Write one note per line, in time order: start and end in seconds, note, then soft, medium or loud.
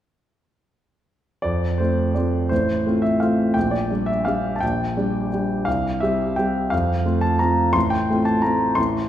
1.42 1.79 F2 soft
1.42 1.79 D5 medium
1.78 2.12 A3 soft
1.78 2.13 C4 soft
1.78 2.13 F4 soft
1.78 2.15 C5 soft
2.15 2.48 A3 soft
2.15 2.48 C4 soft
2.15 2.48 F4 soft
2.15 2.50 D5 soft
2.49 2.85 A1 soft
2.49 3.03 C5 medium
2.86 3.18 A3 soft
2.86 3.18 C4 soft
2.86 3.19 F4 soft
3.02 3.20 E5 medium
3.20 3.53 A3 soft
3.20 3.53 C4 soft
3.20 3.53 F4 soft
3.20 3.55 F5 soft
3.54 3.89 A#1 soft
3.54 3.72 G5 medium
3.71 4.08 D5 medium
3.90 4.23 G3 soft
3.90 4.23 D4 soft
3.90 4.24 G4 soft
4.06 4.26 E5 medium
4.25 4.59 G3 soft
4.25 4.59 D4 soft
4.25 4.59 G4 soft
4.25 4.54 F5 medium
4.56 4.62 A5 soft
4.61 4.95 A#1 soft
4.61 5.66 G5 medium
4.97 5.28 G3 soft
4.97 5.29 D4 soft
4.97 5.29 G4 soft
5.33 5.64 G3 soft
5.33 5.64 D4 soft
5.33 5.64 G4 soft
5.65 6.01 C2 soft
5.65 6.01 F5 medium
6.00 6.35 G3 soft
6.00 6.35 C4 soft
6.00 6.35 G4 soft
6.00 6.37 E5 medium
6.36 6.69 G3 soft
6.36 6.69 C4 soft
6.36 6.69 G4 soft
6.36 6.71 G5 medium
6.70 7.05 F2 soft
6.70 7.23 F5 medium
7.05 7.37 A3 soft
7.05 7.38 C4 soft
7.05 7.38 F4 soft
7.21 7.40 A5 medium
7.39 7.72 A3 soft
7.39 7.72 C4 soft
7.39 7.72 F4 soft
7.39 7.74 A#5 medium
7.73 8.08 A1 soft
7.73 7.91 C6 medium
7.90 8.25 G5 medium
8.10 8.41 A3 soft
8.10 8.41 C4 soft
8.10 8.41 F4 soft
8.25 8.43 A5 medium
8.42 8.74 A3 soft
8.42 8.74 C4 soft
8.42 8.75 F4 soft
8.42 8.77 A#5 medium
8.75 9.09 A1 soft
8.75 9.09 C6 medium